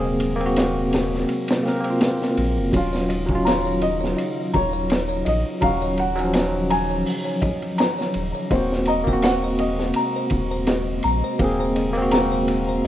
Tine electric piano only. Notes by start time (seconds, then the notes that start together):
Already playing: A#3 C4 G#4
0.36 A#3
0.41 C4
0.46 F#4
1.63 A#3 C4
1.68 A#4
1.81 A#3
1.85 C4
1.90 F4
2.72 F#3 C#4
2.77 F4
3.26 F#3
3.31 C#4
3.35 F4
5.61 F#3 C#4
5.66 F#4
6.15 F#3
6.20 C#4
6.24 F3
8.51 A#3 C4
8.55 F#4
9.04 A#3
9.09 C4
9.13 F#4
11.39 A#3 C4
11.44 G#4
11.93 A#3
11.97 C4
12.02 F#4